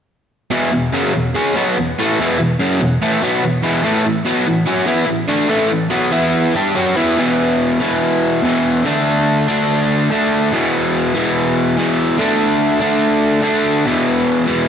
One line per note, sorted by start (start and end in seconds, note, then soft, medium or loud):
0.51 0.71 E2 medium
0.51 0.71 B2 medium
0.51 0.72 E3 medium
0.72 0.89 E2 medium
0.72 0.89 B2 medium
0.92 1.13 F#2 medium
0.92 1.13 C#3 medium
0.92 1.13 F#3 medium
1.14 1.31 E2 medium
1.14 1.31 B2 medium
1.35 1.55 C#3 medium
1.35 1.55 G#3 medium
1.35 1.55 C#4 loud
1.56 1.76 B2 medium
1.56 1.76 F#3 medium
1.56 1.76 B3 medium
1.78 1.94 E2 medium
1.78 1.94 B2 medium
1.99 2.18 A2 medium
1.99 2.19 E3 loud
1.99 2.19 A3 loud
2.19 2.38 E2 medium
2.19 2.38 B2 medium
2.19 2.39 E3 medium
2.39 2.56 E2 medium
2.39 2.55 B2 medium
2.59 2.80 F#2 loud
2.59 2.80 C#3 medium
2.59 2.80 F#3 loud
2.81 2.97 E2 medium
2.81 2.97 B2 medium
3.02 3.22 A2 loud
3.02 3.22 E3 loud
3.02 3.22 A3 loud
3.23 3.42 B2 medium
3.23 3.43 F#3 medium
3.23 3.43 B3 medium
3.44 3.60 E2 medium
3.44 3.60 B2 medium
3.63 3.83 E2 loud
3.63 3.83 B2 loud
3.63 3.83 E3 medium
3.84 4.04 A2 medium
3.84 4.04 E3 medium
3.84 4.05 A3 loud
4.06 4.22 A2 medium
4.06 4.22 E3 medium
4.25 4.46 B2 medium
4.25 4.46 F#3 loud
4.25 4.46 B3 loud
4.47 4.64 A2 medium
4.47 4.64 E3 medium
4.66 4.86 F#3 loud
4.66 4.87 C#4 loud
4.66 4.87 F#4 loud
4.86 5.06 E3 medium
4.86 5.07 B3 loud
4.86 5.08 E4 loud
5.06 5.24 A2 medium
5.06 5.25 E3 medium
5.28 5.49 D3 loud
5.28 5.49 A3 medium
5.28 5.50 D4 loud
5.49 5.69 A2 loud
5.49 5.70 E3 medium
5.49 5.71 A3 medium
5.70 5.88 A2 medium
5.70 5.88 E3 medium
5.90 6.11 B2 medium
5.90 6.11 F#3 medium
5.90 6.11 B3 loud
6.12 6.54 E3 medium
6.12 6.54 B3 medium
6.12 6.54 E4 medium
6.55 6.75 G3 medium
6.55 6.75 D4 medium
6.55 6.75 G4 medium
6.75 6.95 F#3 medium
6.75 6.96 C#4 medium
6.75 6.96 F#4 loud
6.96 7.16 E3 medium
6.96 7.17 B3 loud
6.96 7.17 E4 loud
7.17 7.78 E2 medium
7.17 7.79 B2 medium
7.17 7.79 E3 medium
7.80 8.41 E2 medium
7.80 8.42 B2 medium
7.80 8.41 E3 medium
8.43 8.83 E2 medium
8.43 8.84 B2 medium
8.43 8.84 E3 medium
8.85 9.46 D3 medium
8.85 9.47 A3 medium
8.85 9.47 D4 medium
9.48 10.09 D3 medium
9.48 10.10 A3 medium
9.48 10.09 D4 medium
10.10 10.50 D3 medium
10.10 10.51 A3 medium
10.10 10.51 D4 medium
10.52 11.13 E2 medium
10.52 11.14 B2 medium
10.52 11.13 E3 medium
11.14 11.75 E2 medium
11.14 11.76 B2 medium
11.14 11.75 E3 medium
11.76 12.17 E2 medium
11.76 12.17 B2 medium
11.76 12.18 E3 medium
12.18 12.79 D3 medium
12.18 12.80 A3 medium
12.18 12.79 D4 loud
12.80 13.40 D3 medium
12.80 13.42 A3 medium
12.80 13.42 D4 medium
13.42 13.83 D3 medium
13.42 13.84 A3 medium
13.42 13.84 D4 medium
13.85 14.46 E2 medium
13.85 14.46 B2 medium
13.85 14.45 E3 medium
14.46 14.68 E2 medium
14.46 14.68 B2 medium
14.46 14.68 E3 medium